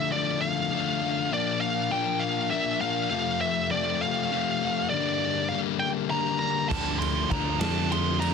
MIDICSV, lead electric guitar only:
0, 0, Header, 1, 2, 480
1, 0, Start_track
1, 0, Key_signature, -1, "minor"
1, 0, Tempo, 600000
1, 1050, Time_signature, 6, 3, 24, 8
1, 6670, End_track
2, 0, Start_track
2, 0, Title_t, "Lead electric guitar"
2, 0, Program_c, 0, 29
2, 94, Note_on_c, 0, 74, 75
2, 327, Note_off_c, 0, 74, 0
2, 330, Note_on_c, 0, 77, 89
2, 1064, Note_off_c, 0, 77, 0
2, 1067, Note_on_c, 0, 74, 92
2, 1283, Note_off_c, 0, 74, 0
2, 1286, Note_on_c, 0, 77, 85
2, 1531, Note_on_c, 0, 79, 94
2, 1535, Note_off_c, 0, 77, 0
2, 1755, Note_on_c, 0, 77, 93
2, 1777, Note_off_c, 0, 79, 0
2, 2000, Note_off_c, 0, 77, 0
2, 2004, Note_on_c, 0, 76, 89
2, 2243, Note_off_c, 0, 76, 0
2, 2247, Note_on_c, 0, 77, 99
2, 2468, Note_off_c, 0, 77, 0
2, 2477, Note_on_c, 0, 77, 107
2, 2725, Note_off_c, 0, 77, 0
2, 2728, Note_on_c, 0, 76, 86
2, 2965, Note_off_c, 0, 76, 0
2, 2968, Note_on_c, 0, 74, 88
2, 3212, Note_off_c, 0, 74, 0
2, 3216, Note_on_c, 0, 77, 96
2, 3913, Note_off_c, 0, 77, 0
2, 3916, Note_on_c, 0, 74, 99
2, 4389, Note_on_c, 0, 77, 90
2, 4416, Note_off_c, 0, 74, 0
2, 4456, Note_off_c, 0, 77, 0
2, 4637, Note_on_c, 0, 79, 97
2, 4704, Note_off_c, 0, 79, 0
2, 4882, Note_on_c, 0, 82, 109
2, 5104, Note_off_c, 0, 82, 0
2, 5113, Note_on_c, 0, 82, 106
2, 5347, Note_off_c, 0, 82, 0
2, 5350, Note_on_c, 0, 81, 112
2, 5588, Note_off_c, 0, 81, 0
2, 5591, Note_on_c, 0, 84, 96
2, 5844, Note_off_c, 0, 84, 0
2, 5847, Note_on_c, 0, 82, 93
2, 6076, Note_off_c, 0, 82, 0
2, 6080, Note_on_c, 0, 81, 105
2, 6331, Note_off_c, 0, 81, 0
2, 6335, Note_on_c, 0, 84, 115
2, 6556, Note_off_c, 0, 84, 0
2, 6559, Note_on_c, 0, 82, 114
2, 6670, Note_off_c, 0, 82, 0
2, 6670, End_track
0, 0, End_of_file